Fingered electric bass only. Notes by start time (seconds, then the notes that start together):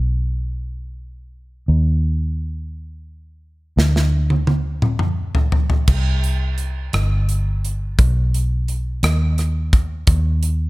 Already playing: B1
1.68 D#2
3.77 D2
5.88 C2
6.93 G1
7.99 B1
9.03 D#2
10.08 D#2